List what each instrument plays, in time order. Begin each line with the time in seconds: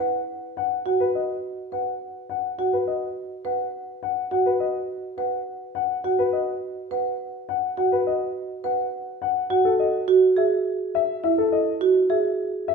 0.00 marimba B4, grand piano F#5
0.57 grand piano F#5
0.86 marimba F#4, grand piano F#5
1.00 grand piano B4
1.15 grand piano D#5
1.72 marimba B4, grand piano F#5
2.30 grand piano F#5
2.58 marimba F#4, grand piano F#5
2.73 grand piano B4
2.87 grand piano D#5
3.45 marimba B4, grand piano F#5
4.03 grand piano F#5
4.31 marimba F#4, grand piano F#5
4.46 grand piano B4
4.60 grand piano D#5
5.17 marimba B4, grand piano F#5
5.75 grand piano F#5
6.04 marimba F#4, grand piano F#5
6.19 grand piano B4
6.33 grand piano D#5
6.91 marimba B4, grand piano F#5
7.49 grand piano F#5
7.77 marimba F#4, grand piano F#5
7.92 grand piano B4
8.07 grand piano D#5
8.64 marimba B4, grand piano F#5
9.22 grand piano F#5
9.50 marimba F#4, grand piano F#5
9.65 grand piano A4
9.80 grand piano D#5
10.08 marimba F#4
10.37 marimba G#4, grand piano E5
10.95 grand piano E5
11.24 marimba E4, grand piano E5
11.38 grand piano A4
11.52 grand piano D#5
11.81 marimba F#4
12.10 marimba G#4, grand piano E5
12.68 grand piano E5